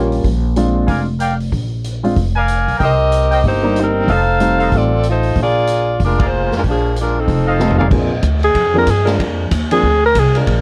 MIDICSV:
0, 0, Header, 1, 8, 480
1, 0, Start_track
1, 0, Tempo, 319489
1, 368, Time_signature, 4, 2, 24, 8
1, 15943, End_track
2, 0, Start_track
2, 0, Title_t, "Trumpet section"
2, 0, Program_c, 0, 61
2, 1312, Note_on_c, 0, 74, 62
2, 1315, Note_on_c, 0, 77, 62
2, 1315, Note_on_c, 0, 80, 74
2, 1318, Note_on_c, 0, 70, 67
2, 1520, Note_off_c, 0, 74, 0
2, 1522, Note_off_c, 0, 77, 0
2, 1522, Note_off_c, 0, 80, 0
2, 1524, Note_off_c, 0, 70, 0
2, 1803, Note_on_c, 0, 70, 71
2, 1803, Note_on_c, 0, 74, 68
2, 1803, Note_on_c, 0, 77, 73
2, 1807, Note_on_c, 0, 79, 78
2, 2007, Note_off_c, 0, 70, 0
2, 2007, Note_off_c, 0, 74, 0
2, 2007, Note_off_c, 0, 77, 0
2, 2009, Note_off_c, 0, 79, 0
2, 3547, Note_on_c, 0, 80, 93
2, 3549, Note_on_c, 0, 70, 87
2, 3550, Note_on_c, 0, 74, 79
2, 3550, Note_on_c, 0, 77, 78
2, 4172, Note_off_c, 0, 80, 0
2, 4173, Note_off_c, 0, 70, 0
2, 4173, Note_off_c, 0, 74, 0
2, 4173, Note_off_c, 0, 77, 0
2, 4198, Note_on_c, 0, 70, 71
2, 4204, Note_on_c, 0, 72, 67
2, 4204, Note_on_c, 0, 75, 64
2, 4206, Note_on_c, 0, 79, 84
2, 4404, Note_off_c, 0, 70, 0
2, 4407, Note_off_c, 0, 72, 0
2, 4407, Note_off_c, 0, 75, 0
2, 4409, Note_off_c, 0, 79, 0
2, 4979, Note_on_c, 0, 70, 79
2, 4979, Note_on_c, 0, 72, 74
2, 4987, Note_on_c, 0, 75, 74
2, 4987, Note_on_c, 0, 79, 89
2, 5104, Note_off_c, 0, 70, 0
2, 5104, Note_off_c, 0, 72, 0
2, 5109, Note_off_c, 0, 75, 0
2, 5109, Note_off_c, 0, 79, 0
2, 6131, Note_on_c, 0, 72, 61
2, 6132, Note_on_c, 0, 69, 73
2, 6133, Note_on_c, 0, 75, 59
2, 6137, Note_on_c, 0, 77, 74
2, 6332, Note_off_c, 0, 69, 0
2, 6332, Note_off_c, 0, 72, 0
2, 6333, Note_off_c, 0, 75, 0
2, 6336, Note_off_c, 0, 77, 0
2, 6893, Note_on_c, 0, 69, 67
2, 6900, Note_on_c, 0, 72, 70
2, 6900, Note_on_c, 0, 77, 77
2, 6903, Note_on_c, 0, 75, 66
2, 7021, Note_off_c, 0, 69, 0
2, 7025, Note_off_c, 0, 72, 0
2, 7025, Note_off_c, 0, 77, 0
2, 7027, Note_off_c, 0, 75, 0
2, 9307, Note_on_c, 0, 77, 83
2, 9309, Note_on_c, 0, 70, 74
2, 9309, Note_on_c, 0, 74, 71
2, 9312, Note_on_c, 0, 68, 73
2, 9429, Note_off_c, 0, 77, 0
2, 9430, Note_off_c, 0, 74, 0
2, 9431, Note_off_c, 0, 70, 0
2, 9433, Note_off_c, 0, 68, 0
2, 11220, Note_on_c, 0, 72, 71
2, 11221, Note_on_c, 0, 69, 70
2, 11221, Note_on_c, 0, 75, 70
2, 11223, Note_on_c, 0, 77, 84
2, 11674, Note_off_c, 0, 69, 0
2, 11674, Note_off_c, 0, 72, 0
2, 11674, Note_off_c, 0, 75, 0
2, 11675, Note_off_c, 0, 77, 0
2, 11696, Note_on_c, 0, 70, 67
2, 11700, Note_on_c, 0, 74, 69
2, 11701, Note_on_c, 0, 77, 87
2, 11702, Note_on_c, 0, 68, 68
2, 11822, Note_off_c, 0, 70, 0
2, 11825, Note_off_c, 0, 74, 0
2, 11825, Note_off_c, 0, 77, 0
2, 11826, Note_off_c, 0, 68, 0
2, 15943, End_track
3, 0, Start_track
3, 0, Title_t, "Alto saxophone"
3, 0, Program_c, 1, 65
3, 12685, Note_on_c, 1, 68, 81
3, 13123, Note_off_c, 1, 68, 0
3, 13193, Note_on_c, 1, 70, 89
3, 13381, Note_on_c, 1, 68, 77
3, 13403, Note_off_c, 1, 70, 0
3, 13653, Note_off_c, 1, 68, 0
3, 14601, Note_on_c, 1, 68, 83
3, 15040, Note_off_c, 1, 68, 0
3, 15110, Note_on_c, 1, 70, 98
3, 15311, Note_on_c, 1, 68, 80
3, 15333, Note_off_c, 1, 70, 0
3, 15578, Note_off_c, 1, 68, 0
3, 15943, End_track
4, 0, Start_track
4, 0, Title_t, "Saxophone section"
4, 0, Program_c, 2, 65
4, 0, Note_on_c, 2, 51, 59
4, 0, Note_on_c, 2, 58, 65
4, 0, Note_on_c, 2, 61, 60
4, 0, Note_on_c, 2, 67, 67
4, 209, Note_off_c, 2, 51, 0
4, 211, Note_off_c, 2, 58, 0
4, 213, Note_off_c, 2, 67, 0
4, 214, Note_off_c, 2, 61, 0
4, 4249, Note_on_c, 2, 67, 69
4, 4251, Note_on_c, 2, 75, 90
4, 4254, Note_on_c, 2, 60, 73
4, 4259, Note_on_c, 2, 70, 76
4, 5129, Note_off_c, 2, 67, 0
4, 5130, Note_off_c, 2, 75, 0
4, 5131, Note_off_c, 2, 60, 0
4, 5133, Note_off_c, 2, 70, 0
4, 5204, Note_on_c, 2, 72, 84
4, 5206, Note_on_c, 2, 67, 72
4, 5209, Note_on_c, 2, 58, 70
4, 5210, Note_on_c, 2, 63, 71
4, 5666, Note_off_c, 2, 72, 0
4, 5667, Note_off_c, 2, 67, 0
4, 5668, Note_off_c, 2, 58, 0
4, 5669, Note_off_c, 2, 63, 0
4, 5709, Note_on_c, 2, 60, 75
4, 5710, Note_on_c, 2, 55, 68
4, 5716, Note_on_c, 2, 63, 69
4, 5722, Note_on_c, 2, 70, 82
4, 6146, Note_off_c, 2, 63, 0
4, 6159, Note_off_c, 2, 55, 0
4, 6159, Note_off_c, 2, 60, 0
4, 6160, Note_on_c, 2, 72, 79
4, 6164, Note_on_c, 2, 63, 78
4, 6165, Note_off_c, 2, 70, 0
4, 6165, Note_on_c, 2, 77, 105
4, 6175, Note_on_c, 2, 69, 84
4, 7104, Note_off_c, 2, 72, 0
4, 7106, Note_off_c, 2, 63, 0
4, 7107, Note_off_c, 2, 77, 0
4, 7112, Note_off_c, 2, 69, 0
4, 7126, Note_on_c, 2, 65, 75
4, 7131, Note_on_c, 2, 60, 77
4, 7131, Note_on_c, 2, 74, 93
4, 7141, Note_on_c, 2, 69, 72
4, 7588, Note_off_c, 2, 65, 0
4, 7590, Note_off_c, 2, 60, 0
4, 7590, Note_off_c, 2, 74, 0
4, 7595, Note_off_c, 2, 69, 0
4, 7650, Note_on_c, 2, 63, 71
4, 7651, Note_on_c, 2, 65, 69
4, 7652, Note_on_c, 2, 57, 73
4, 7658, Note_on_c, 2, 72, 84
4, 8089, Note_off_c, 2, 63, 0
4, 8090, Note_off_c, 2, 57, 0
4, 8090, Note_off_c, 2, 65, 0
4, 8093, Note_off_c, 2, 72, 0
4, 8118, Note_on_c, 2, 65, 74
4, 8121, Note_on_c, 2, 74, 91
4, 8124, Note_on_c, 2, 68, 72
4, 8126, Note_on_c, 2, 58, 74
4, 8984, Note_off_c, 2, 65, 0
4, 8985, Note_off_c, 2, 74, 0
4, 8986, Note_off_c, 2, 68, 0
4, 8988, Note_off_c, 2, 58, 0
4, 9062, Note_on_c, 2, 62, 68
4, 9069, Note_on_c, 2, 56, 66
4, 9071, Note_on_c, 2, 65, 64
4, 9073, Note_on_c, 2, 70, 78
4, 9335, Note_off_c, 2, 62, 0
4, 9338, Note_off_c, 2, 56, 0
4, 9339, Note_off_c, 2, 65, 0
4, 9340, Note_off_c, 2, 70, 0
4, 9371, Note_on_c, 2, 68, 68
4, 9373, Note_on_c, 2, 58, 71
4, 9376, Note_on_c, 2, 65, 72
4, 9382, Note_on_c, 2, 72, 85
4, 9820, Note_off_c, 2, 58, 0
4, 9820, Note_off_c, 2, 68, 0
4, 9822, Note_off_c, 2, 65, 0
4, 9825, Note_off_c, 2, 72, 0
4, 9853, Note_on_c, 2, 56, 60
4, 9856, Note_on_c, 2, 65, 58
4, 9860, Note_on_c, 2, 70, 71
4, 9863, Note_on_c, 2, 62, 60
4, 9920, Note_off_c, 2, 56, 0
4, 9922, Note_off_c, 2, 65, 0
4, 9925, Note_off_c, 2, 70, 0
4, 9927, Note_off_c, 2, 62, 0
4, 10035, Note_on_c, 2, 53, 61
4, 10037, Note_on_c, 2, 68, 72
4, 10039, Note_on_c, 2, 62, 70
4, 10048, Note_on_c, 2, 58, 66
4, 10451, Note_off_c, 2, 53, 0
4, 10452, Note_off_c, 2, 68, 0
4, 10453, Note_off_c, 2, 62, 0
4, 10458, Note_off_c, 2, 58, 0
4, 10515, Note_on_c, 2, 56, 65
4, 10518, Note_on_c, 2, 62, 67
4, 10522, Note_on_c, 2, 65, 69
4, 10526, Note_on_c, 2, 70, 74
4, 10781, Note_off_c, 2, 56, 0
4, 10783, Note_off_c, 2, 62, 0
4, 10785, Note_off_c, 2, 65, 0
4, 10787, Note_off_c, 2, 70, 0
4, 10796, Note_on_c, 2, 69, 73
4, 10805, Note_on_c, 2, 63, 64
4, 10810, Note_on_c, 2, 53, 65
4, 10810, Note_on_c, 2, 60, 63
4, 11732, Note_off_c, 2, 69, 0
4, 11736, Note_off_c, 2, 63, 0
4, 11739, Note_off_c, 2, 53, 0
4, 11739, Note_off_c, 2, 60, 0
4, 15943, End_track
5, 0, Start_track
5, 0, Title_t, "Saxophone section"
5, 0, Program_c, 3, 65
5, 13595, Note_on_c, 3, 56, 96
5, 13602, Note_on_c, 3, 70, 101
5, 13603, Note_on_c, 3, 65, 82
5, 13606, Note_on_c, 3, 62, 88
5, 14235, Note_off_c, 3, 56, 0
5, 14239, Note_off_c, 3, 65, 0
5, 14239, Note_off_c, 3, 70, 0
5, 14240, Note_off_c, 3, 62, 0
5, 15560, Note_on_c, 3, 62, 72
5, 15560, Note_on_c, 3, 70, 88
5, 15564, Note_on_c, 3, 56, 82
5, 15564, Note_on_c, 3, 65, 74
5, 15943, Note_off_c, 3, 56, 0
5, 15943, Note_off_c, 3, 62, 0
5, 15943, Note_off_c, 3, 65, 0
5, 15943, Note_off_c, 3, 70, 0
5, 15943, End_track
6, 0, Start_track
6, 0, Title_t, "Grand piano"
6, 0, Program_c, 4, 0
6, 0, Note_on_c, 4, 55, 51
6, 0, Note_on_c, 4, 58, 44
6, 0, Note_on_c, 4, 61, 46
6, 0, Note_on_c, 4, 65, 57
6, 373, Note_off_c, 4, 58, 0
6, 373, Note_off_c, 4, 65, 0
6, 374, Note_off_c, 4, 55, 0
6, 375, Note_off_c, 4, 61, 0
6, 847, Note_on_c, 4, 56, 51
6, 855, Note_on_c, 4, 62, 49
6, 857, Note_on_c, 4, 60, 49
6, 863, Note_on_c, 4, 65, 58
6, 1567, Note_off_c, 4, 56, 0
6, 1571, Note_off_c, 4, 62, 0
6, 1572, Note_off_c, 4, 60, 0
6, 1575, Note_off_c, 4, 65, 0
6, 3056, Note_on_c, 4, 56, 53
6, 3065, Note_on_c, 4, 65, 62
6, 3067, Note_on_c, 4, 60, 50
6, 3068, Note_on_c, 4, 62, 49
6, 3224, Note_off_c, 4, 56, 0
6, 3229, Note_off_c, 4, 65, 0
6, 3230, Note_off_c, 4, 60, 0
6, 3230, Note_off_c, 4, 62, 0
6, 5452, Note_on_c, 4, 58, 56
6, 5454, Note_on_c, 4, 55, 62
6, 5462, Note_on_c, 4, 62, 52
6, 5468, Note_on_c, 4, 63, 61
6, 6084, Note_off_c, 4, 58, 0
6, 6085, Note_off_c, 4, 55, 0
6, 6090, Note_off_c, 4, 62, 0
6, 6093, Note_off_c, 4, 63, 0
6, 6609, Note_on_c, 4, 55, 52
6, 6611, Note_on_c, 4, 57, 48
6, 6611, Note_on_c, 4, 63, 55
6, 6612, Note_on_c, 4, 60, 48
6, 7328, Note_off_c, 4, 55, 0
6, 7329, Note_off_c, 4, 57, 0
6, 7329, Note_off_c, 4, 63, 0
6, 7330, Note_off_c, 4, 60, 0
6, 11419, Note_on_c, 4, 55, 47
6, 11424, Note_on_c, 4, 60, 42
6, 11426, Note_on_c, 4, 57, 44
6, 11427, Note_on_c, 4, 63, 54
6, 11882, Note_off_c, 4, 60, 0
6, 11894, Note_off_c, 4, 55, 0
6, 11895, Note_on_c, 4, 53, 50
6, 11897, Note_off_c, 4, 57, 0
6, 11897, Note_off_c, 4, 63, 0
6, 11897, Note_on_c, 4, 58, 54
6, 11898, Note_on_c, 4, 62, 47
6, 11899, Note_on_c, 4, 68, 61
6, 11905, Note_on_c, 4, 60, 46
6, 12161, Note_off_c, 4, 53, 0
6, 12162, Note_off_c, 4, 58, 0
6, 12163, Note_off_c, 4, 62, 0
6, 12163, Note_off_c, 4, 68, 0
6, 12166, Note_off_c, 4, 60, 0
6, 13128, Note_on_c, 4, 53, 59
6, 13141, Note_on_c, 4, 58, 55
6, 13142, Note_on_c, 4, 68, 61
6, 13143, Note_on_c, 4, 62, 56
6, 13146, Note_on_c, 4, 60, 52
6, 13300, Note_off_c, 4, 53, 0
6, 13307, Note_off_c, 4, 58, 0
6, 13307, Note_off_c, 4, 62, 0
6, 13307, Note_off_c, 4, 68, 0
6, 13309, Note_off_c, 4, 60, 0
6, 14589, Note_on_c, 4, 53, 53
6, 14592, Note_on_c, 4, 58, 46
6, 14592, Note_on_c, 4, 68, 62
6, 14598, Note_on_c, 4, 60, 53
6, 14601, Note_on_c, 4, 62, 49
6, 14750, Note_off_c, 4, 53, 0
6, 14752, Note_off_c, 4, 58, 0
6, 14752, Note_off_c, 4, 68, 0
6, 14755, Note_off_c, 4, 60, 0
6, 14756, Note_off_c, 4, 62, 0
6, 15943, End_track
7, 0, Start_track
7, 0, Title_t, "Upright bass"
7, 0, Program_c, 5, 32
7, 0, Note_on_c, 5, 34, 77
7, 320, Note_off_c, 5, 34, 0
7, 362, Note_on_c, 5, 34, 82
7, 1277, Note_off_c, 5, 34, 0
7, 1326, Note_on_c, 5, 29, 86
7, 2239, Note_off_c, 5, 29, 0
7, 2287, Note_on_c, 5, 34, 71
7, 3200, Note_off_c, 5, 34, 0
7, 3254, Note_on_c, 5, 29, 71
7, 3976, Note_off_c, 5, 29, 0
7, 4025, Note_on_c, 5, 35, 59
7, 4194, Note_off_c, 5, 35, 0
7, 4212, Note_on_c, 5, 36, 73
7, 5122, Note_off_c, 5, 36, 0
7, 5168, Note_on_c, 5, 31, 82
7, 6080, Note_off_c, 5, 31, 0
7, 6121, Note_on_c, 5, 29, 81
7, 7037, Note_off_c, 5, 29, 0
7, 7094, Note_on_c, 5, 33, 78
7, 8003, Note_off_c, 5, 33, 0
7, 8050, Note_on_c, 5, 34, 72
7, 8962, Note_off_c, 5, 34, 0
7, 9008, Note_on_c, 5, 29, 76
7, 9733, Note_off_c, 5, 29, 0
7, 9791, Note_on_c, 5, 41, 56
7, 9957, Note_off_c, 5, 41, 0
7, 9978, Note_on_c, 5, 34, 75
7, 10885, Note_off_c, 5, 34, 0
7, 10936, Note_on_c, 5, 29, 72
7, 11844, Note_off_c, 5, 29, 0
7, 11885, Note_on_c, 5, 34, 68
7, 12352, Note_off_c, 5, 34, 0
7, 12358, Note_on_c, 5, 38, 83
7, 12828, Note_off_c, 5, 38, 0
7, 12842, Note_on_c, 5, 41, 79
7, 13310, Note_off_c, 5, 41, 0
7, 13324, Note_on_c, 5, 43, 75
7, 13791, Note_off_c, 5, 43, 0
7, 13805, Note_on_c, 5, 41, 75
7, 14271, Note_off_c, 5, 41, 0
7, 14283, Note_on_c, 5, 39, 93
7, 14750, Note_off_c, 5, 39, 0
7, 14768, Note_on_c, 5, 38, 81
7, 15233, Note_off_c, 5, 38, 0
7, 15250, Note_on_c, 5, 36, 84
7, 15714, Note_off_c, 5, 36, 0
7, 15728, Note_on_c, 5, 34, 83
7, 15943, Note_off_c, 5, 34, 0
7, 15943, End_track
8, 0, Start_track
8, 0, Title_t, "Drums"
8, 179, Note_on_c, 9, 46, 35
8, 330, Note_off_c, 9, 46, 0
8, 364, Note_on_c, 9, 46, 41
8, 365, Note_on_c, 9, 36, 28
8, 515, Note_off_c, 9, 46, 0
8, 516, Note_off_c, 9, 36, 0
8, 844, Note_on_c, 9, 42, 50
8, 994, Note_off_c, 9, 42, 0
8, 1322, Note_on_c, 9, 46, 42
8, 1325, Note_on_c, 9, 36, 33
8, 1473, Note_off_c, 9, 46, 0
8, 1475, Note_off_c, 9, 36, 0
8, 1803, Note_on_c, 9, 42, 52
8, 1954, Note_off_c, 9, 42, 0
8, 2110, Note_on_c, 9, 46, 37
8, 2260, Note_off_c, 9, 46, 0
8, 2289, Note_on_c, 9, 36, 29
8, 2293, Note_on_c, 9, 46, 40
8, 2440, Note_off_c, 9, 36, 0
8, 2443, Note_off_c, 9, 46, 0
8, 2770, Note_on_c, 9, 42, 51
8, 2921, Note_off_c, 9, 42, 0
8, 3072, Note_on_c, 9, 46, 33
8, 3222, Note_off_c, 9, 46, 0
8, 3247, Note_on_c, 9, 46, 44
8, 3251, Note_on_c, 9, 36, 33
8, 3398, Note_off_c, 9, 46, 0
8, 3402, Note_off_c, 9, 36, 0
8, 3727, Note_on_c, 9, 42, 49
8, 3877, Note_off_c, 9, 42, 0
8, 4031, Note_on_c, 9, 46, 34
8, 4181, Note_off_c, 9, 46, 0
8, 4212, Note_on_c, 9, 36, 29
8, 4213, Note_on_c, 9, 46, 41
8, 4362, Note_off_c, 9, 36, 0
8, 4363, Note_off_c, 9, 46, 0
8, 4687, Note_on_c, 9, 42, 53
8, 4838, Note_off_c, 9, 42, 0
8, 4985, Note_on_c, 9, 46, 35
8, 5136, Note_off_c, 9, 46, 0
8, 5168, Note_on_c, 9, 46, 41
8, 5169, Note_on_c, 9, 36, 30
8, 5319, Note_off_c, 9, 36, 0
8, 5319, Note_off_c, 9, 46, 0
8, 5647, Note_on_c, 9, 42, 47
8, 5797, Note_off_c, 9, 42, 0
8, 6128, Note_on_c, 9, 36, 30
8, 6131, Note_on_c, 9, 46, 42
8, 6278, Note_off_c, 9, 36, 0
8, 6282, Note_off_c, 9, 46, 0
8, 6608, Note_on_c, 9, 42, 52
8, 6758, Note_off_c, 9, 42, 0
8, 6910, Note_on_c, 9, 46, 33
8, 7060, Note_off_c, 9, 46, 0
8, 7088, Note_on_c, 9, 36, 32
8, 7088, Note_on_c, 9, 46, 42
8, 7239, Note_off_c, 9, 36, 0
8, 7239, Note_off_c, 9, 46, 0
8, 7562, Note_on_c, 9, 42, 52
8, 7712, Note_off_c, 9, 42, 0
8, 7858, Note_on_c, 9, 46, 36
8, 8008, Note_off_c, 9, 46, 0
8, 8046, Note_on_c, 9, 46, 39
8, 8051, Note_on_c, 9, 36, 31
8, 8196, Note_off_c, 9, 46, 0
8, 8201, Note_off_c, 9, 36, 0
8, 8522, Note_on_c, 9, 42, 53
8, 8673, Note_off_c, 9, 42, 0
8, 9012, Note_on_c, 9, 36, 30
8, 9012, Note_on_c, 9, 46, 45
8, 9162, Note_off_c, 9, 46, 0
8, 9163, Note_off_c, 9, 36, 0
8, 9310, Note_on_c, 9, 51, 65
8, 9313, Note_on_c, 9, 36, 70
8, 9460, Note_off_c, 9, 51, 0
8, 9464, Note_off_c, 9, 36, 0
8, 9800, Note_on_c, 9, 46, 37
8, 9802, Note_on_c, 9, 38, 28
8, 9950, Note_off_c, 9, 46, 0
8, 9952, Note_off_c, 9, 38, 0
8, 9979, Note_on_c, 9, 46, 41
8, 9980, Note_on_c, 9, 36, 29
8, 10130, Note_off_c, 9, 36, 0
8, 10130, Note_off_c, 9, 46, 0
8, 10463, Note_on_c, 9, 42, 56
8, 10613, Note_off_c, 9, 42, 0
8, 10936, Note_on_c, 9, 36, 30
8, 10939, Note_on_c, 9, 46, 42
8, 11086, Note_off_c, 9, 36, 0
8, 11089, Note_off_c, 9, 46, 0
8, 11414, Note_on_c, 9, 38, 42
8, 11564, Note_off_c, 9, 38, 0
8, 11575, Note_on_c, 9, 43, 56
8, 11725, Note_off_c, 9, 43, 0
8, 11728, Note_on_c, 9, 43, 67
8, 11879, Note_off_c, 9, 43, 0
8, 11885, Note_on_c, 9, 36, 69
8, 11886, Note_on_c, 9, 49, 72
8, 12035, Note_off_c, 9, 36, 0
8, 12036, Note_off_c, 9, 49, 0
8, 12358, Note_on_c, 9, 44, 61
8, 12358, Note_on_c, 9, 51, 69
8, 12364, Note_on_c, 9, 36, 22
8, 12509, Note_off_c, 9, 44, 0
8, 12509, Note_off_c, 9, 51, 0
8, 12514, Note_off_c, 9, 36, 0
8, 12665, Note_on_c, 9, 51, 45
8, 12815, Note_off_c, 9, 51, 0
8, 12843, Note_on_c, 9, 51, 59
8, 12844, Note_on_c, 9, 36, 24
8, 12993, Note_off_c, 9, 51, 0
8, 12994, Note_off_c, 9, 36, 0
8, 13321, Note_on_c, 9, 44, 60
8, 13321, Note_on_c, 9, 51, 67
8, 13326, Note_on_c, 9, 36, 17
8, 13471, Note_off_c, 9, 44, 0
8, 13471, Note_off_c, 9, 51, 0
8, 13476, Note_off_c, 9, 36, 0
8, 13624, Note_on_c, 9, 51, 46
8, 13626, Note_on_c, 9, 38, 36
8, 13774, Note_off_c, 9, 51, 0
8, 13776, Note_off_c, 9, 38, 0
8, 13808, Note_on_c, 9, 36, 22
8, 13815, Note_on_c, 9, 51, 60
8, 13959, Note_off_c, 9, 36, 0
8, 13966, Note_off_c, 9, 51, 0
8, 14286, Note_on_c, 9, 44, 55
8, 14286, Note_on_c, 9, 51, 76
8, 14288, Note_on_c, 9, 36, 20
8, 14436, Note_off_c, 9, 44, 0
8, 14436, Note_off_c, 9, 51, 0
8, 14439, Note_off_c, 9, 36, 0
8, 14584, Note_on_c, 9, 51, 65
8, 14734, Note_off_c, 9, 51, 0
8, 14768, Note_on_c, 9, 36, 22
8, 14919, Note_off_c, 9, 36, 0
8, 15249, Note_on_c, 9, 44, 62
8, 15249, Note_on_c, 9, 51, 75
8, 15250, Note_on_c, 9, 36, 20
8, 15399, Note_off_c, 9, 44, 0
8, 15399, Note_off_c, 9, 51, 0
8, 15400, Note_off_c, 9, 36, 0
8, 15546, Note_on_c, 9, 51, 47
8, 15696, Note_off_c, 9, 51, 0
8, 15729, Note_on_c, 9, 51, 59
8, 15730, Note_on_c, 9, 36, 24
8, 15880, Note_off_c, 9, 36, 0
8, 15880, Note_off_c, 9, 51, 0
8, 15943, End_track
0, 0, End_of_file